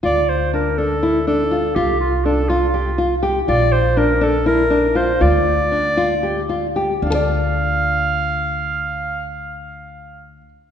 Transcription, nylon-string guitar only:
X:1
M:7/8
L:1/8
Q:1/4=119
K:Dm
V:1 name="Nylon-string guitar"
F2 D D E D F | F2 D F G F G | F2 D D E D F | F2 D F G F G |
[DFAd]6- [DFAd]- | [DFAd]6- [DFAd] |]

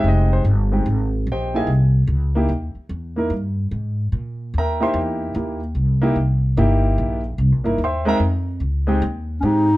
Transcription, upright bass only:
X:1
M:4/4
L:1/8
Q:"Swing" 1/4=147
K:Cphr
V:1 name="Upright bass" clef=bass
F,,,2 G,,,2 A,,,2 B,,,2 | C,,2 D,,2 ^D,, z =E,,2 | G,,2 A,,2 B,,2 ^D,,2 | =E,,2 ^D,,2 C,,2 C,,2 |
G,,,2 B,,,2 (3C,, B,,, G,,, ^D,,2 | F,,2 D,,2 E,,2 A,,2 |]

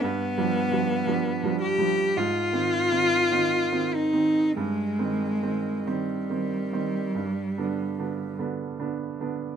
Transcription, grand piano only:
X:1
M:4/4
L:1/8
Q:1/4=49
K:Gphr
V:1 name="Grand piano" clef=bass
(3G,, [F,G,D] [F,G,D] (3[F,G,D] [F,G,D] [F,G,D] (3A,, [E,C] [E,C] (3[E,C] [E,C] [E,C] | (3G,, [E,C] [E,C] (3[E,C] [E,C] [E,C] (3G,, [D,=B,D] [D,B,D] (3[D,B,D] [D,B,D] [D,B,D] |]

